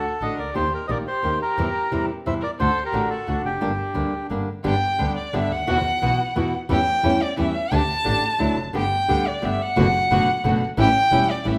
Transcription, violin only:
0, 0, Header, 1, 2, 480
1, 0, Start_track
1, 0, Key_signature, -2, "minor"
1, 0, Tempo, 341297
1, 779, Time_signature, 3, 2, 24, 8
1, 6544, Key_signature, 1, "major"
1, 16290, End_track
2, 0, Start_track
2, 0, Title_t, "Violin"
2, 0, Program_c, 0, 40
2, 0, Note_on_c, 0, 66, 58
2, 232, Note_off_c, 0, 66, 0
2, 283, Note_on_c, 0, 69, 54
2, 514, Note_off_c, 0, 69, 0
2, 526, Note_on_c, 0, 70, 53
2, 756, Note_off_c, 0, 70, 0
2, 768, Note_on_c, 0, 67, 56
2, 997, Note_off_c, 0, 67, 0
2, 1010, Note_on_c, 0, 67, 47
2, 1182, Note_off_c, 0, 67, 0
2, 1224, Note_on_c, 0, 72, 39
2, 1269, Note_off_c, 0, 72, 0
2, 1275, Note_on_c, 0, 70, 51
2, 1380, Note_off_c, 0, 70, 0
2, 1498, Note_on_c, 0, 67, 53
2, 1946, Note_off_c, 0, 67, 0
2, 1978, Note_on_c, 0, 67, 57
2, 2883, Note_off_c, 0, 67, 0
2, 3185, Note_on_c, 0, 72, 55
2, 3292, Note_off_c, 0, 72, 0
2, 3390, Note_on_c, 0, 70, 54
2, 3504, Note_off_c, 0, 70, 0
2, 3646, Note_on_c, 0, 69, 64
2, 3986, Note_off_c, 0, 69, 0
2, 3997, Note_on_c, 0, 67, 59
2, 4341, Note_off_c, 0, 67, 0
2, 4369, Note_on_c, 0, 66, 57
2, 4819, Note_off_c, 0, 66, 0
2, 4854, Note_on_c, 0, 62, 51
2, 6004, Note_off_c, 0, 62, 0
2, 6541, Note_on_c, 0, 79, 81
2, 7215, Note_off_c, 0, 79, 0
2, 7271, Note_on_c, 0, 74, 67
2, 7525, Note_on_c, 0, 76, 78
2, 7546, Note_off_c, 0, 74, 0
2, 7766, Note_on_c, 0, 78, 84
2, 7788, Note_off_c, 0, 76, 0
2, 9194, Note_off_c, 0, 78, 0
2, 9437, Note_on_c, 0, 79, 94
2, 10158, Note_on_c, 0, 74, 82
2, 10179, Note_off_c, 0, 79, 0
2, 10385, Note_off_c, 0, 74, 0
2, 10393, Note_on_c, 0, 76, 83
2, 10889, Note_on_c, 0, 81, 99
2, 10910, Note_off_c, 0, 76, 0
2, 12079, Note_off_c, 0, 81, 0
2, 12328, Note_on_c, 0, 79, 86
2, 13040, Note_on_c, 0, 74, 76
2, 13061, Note_off_c, 0, 79, 0
2, 13291, Note_on_c, 0, 76, 75
2, 13312, Note_off_c, 0, 74, 0
2, 13522, Note_on_c, 0, 78, 88
2, 13543, Note_off_c, 0, 76, 0
2, 14950, Note_off_c, 0, 78, 0
2, 15187, Note_on_c, 0, 79, 102
2, 15900, Note_on_c, 0, 74, 82
2, 15921, Note_off_c, 0, 79, 0
2, 16142, Note_on_c, 0, 76, 71
2, 16163, Note_off_c, 0, 74, 0
2, 16290, Note_off_c, 0, 76, 0
2, 16290, End_track
0, 0, End_of_file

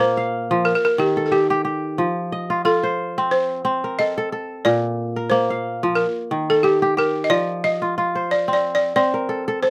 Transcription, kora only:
0, 0, Header, 1, 2, 480
1, 0, Start_track
1, 0, Tempo, 664452
1, 1439, Time_signature, 4, 2, 24, 8
1, 7007, End_track
2, 0, Start_track
2, 0, Title_t, "Kora"
2, 0, Program_c, 0, 46
2, 0, Note_on_c, 0, 46, 81
2, 0, Note_on_c, 0, 58, 77
2, 0, Note_on_c, 0, 60, 76
2, 0, Note_on_c, 0, 70, 70
2, 0, Note_on_c, 0, 81, 59
2, 90, Note_off_c, 0, 60, 0
2, 125, Note_on_c, 0, 77, 64
2, 367, Note_on_c, 0, 53, 79
2, 378, Note_off_c, 0, 81, 0
2, 513, Note_off_c, 0, 46, 0
2, 513, Note_off_c, 0, 53, 0
2, 710, Note_on_c, 0, 51, 77
2, 803, Note_off_c, 0, 70, 0
2, 844, Note_on_c, 0, 69, 62
2, 846, Note_off_c, 0, 77, 0
2, 887, Note_off_c, 0, 58, 0
2, 950, Note_on_c, 0, 67, 68
2, 1082, Note_off_c, 0, 67, 0
2, 1085, Note_on_c, 0, 67, 75
2, 1186, Note_off_c, 0, 67, 0
2, 1189, Note_on_c, 0, 67, 65
2, 1432, Note_on_c, 0, 53, 76
2, 1475, Note_off_c, 0, 51, 0
2, 1678, Note_on_c, 0, 75, 64
2, 1796, Note_off_c, 0, 69, 0
2, 1806, Note_on_c, 0, 65, 63
2, 1910, Note_off_c, 0, 65, 0
2, 1913, Note_on_c, 0, 65, 80
2, 2048, Note_on_c, 0, 72, 61
2, 2209, Note_off_c, 0, 67, 0
2, 2296, Note_on_c, 0, 60, 76
2, 2452, Note_off_c, 0, 75, 0
2, 2631, Note_off_c, 0, 60, 0
2, 2634, Note_on_c, 0, 60, 76
2, 2774, Note_on_c, 0, 70, 57
2, 2885, Note_on_c, 0, 69, 64
2, 2905, Note_off_c, 0, 72, 0
2, 3007, Note_off_c, 0, 65, 0
2, 3014, Note_off_c, 0, 69, 0
2, 3017, Note_on_c, 0, 69, 72
2, 3120, Note_off_c, 0, 69, 0
2, 3122, Note_off_c, 0, 53, 0
2, 3123, Note_on_c, 0, 69, 65
2, 3167, Note_off_c, 0, 70, 0
2, 3362, Note_on_c, 0, 46, 83
2, 3730, Note_on_c, 0, 70, 65
2, 3774, Note_off_c, 0, 69, 0
2, 3837, Note_on_c, 0, 58, 78
2, 3934, Note_off_c, 0, 60, 0
2, 3975, Note_on_c, 0, 77, 60
2, 4212, Note_on_c, 0, 53, 77
2, 4358, Note_off_c, 0, 46, 0
2, 4358, Note_off_c, 0, 53, 0
2, 4559, Note_on_c, 0, 51, 74
2, 4650, Note_off_c, 0, 70, 0
2, 4694, Note_on_c, 0, 69, 59
2, 4696, Note_off_c, 0, 77, 0
2, 4738, Note_off_c, 0, 58, 0
2, 4796, Note_on_c, 0, 67, 63
2, 4925, Note_off_c, 0, 67, 0
2, 4927, Note_on_c, 0, 67, 76
2, 5033, Note_off_c, 0, 67, 0
2, 5036, Note_on_c, 0, 67, 65
2, 5272, Note_on_c, 0, 53, 81
2, 5316, Note_off_c, 0, 51, 0
2, 5521, Note_on_c, 0, 75, 58
2, 5646, Note_off_c, 0, 69, 0
2, 5648, Note_on_c, 0, 65, 66
2, 5760, Note_off_c, 0, 65, 0
2, 5763, Note_on_c, 0, 65, 71
2, 5891, Note_on_c, 0, 72, 67
2, 6056, Note_off_c, 0, 67, 0
2, 6125, Note_on_c, 0, 60, 67
2, 6294, Note_off_c, 0, 75, 0
2, 6469, Note_off_c, 0, 60, 0
2, 6472, Note_on_c, 0, 60, 77
2, 6601, Note_on_c, 0, 70, 55
2, 6711, Note_on_c, 0, 69, 62
2, 6749, Note_off_c, 0, 72, 0
2, 6844, Note_off_c, 0, 69, 0
2, 6847, Note_on_c, 0, 69, 76
2, 6857, Note_off_c, 0, 65, 0
2, 6953, Note_off_c, 0, 69, 0
2, 6956, Note_on_c, 0, 69, 64
2, 6962, Note_off_c, 0, 53, 0
2, 7000, Note_off_c, 0, 70, 0
2, 7007, Note_off_c, 0, 60, 0
2, 7007, Note_off_c, 0, 69, 0
2, 7007, End_track
0, 0, End_of_file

